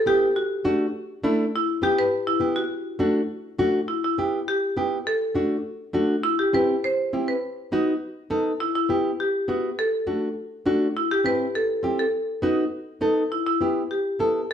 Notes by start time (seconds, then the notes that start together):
0.06 B3 E4 G4
0.36 F#4
0.64 A3 D4 F#4
1.24 A3 D4 E4
1.56 E4
1.82 B3 E4 G4
1.99 B4
2.27 E4
2.40 B3 E4 G4
2.56 F#4
2.99 A3 D4 F#4
3.58 A3 D4 F#4
3.88 E4
4.04 E4
4.18 B3 E4 G4
4.48 G4
4.77 B3 E4 G4
5.07 A4
5.35 A3 D4 F#4
5.93 A3 D4 F#4
6.23 E4
6.39 G4
6.53 C4 E4 G4 B4
6.84 C5
7.13 C4 E4 G4
7.28 B4
7.72 B3 D#4 F#4
8.30 B3 D#4 A4
8.60 E4
8.75 E4
8.89 B3 E4 G4
9.20 G4
9.48 B3 E4 F#4
9.79 A4
10.07 A3 D4 F#4
10.66 A3 D4 F#4
10.97 E4
11.11 G4
11.24 C4 E4 G4 B4
11.55 A4
11.83 C4 E4 G4
11.99 A4
12.42 B3 D#4 F#4
13.01 B3 D#4 A4
13.32 E4
13.46 E4
13.61 B3 E4 G4
13.91 G4
14.19 B3 E4 A4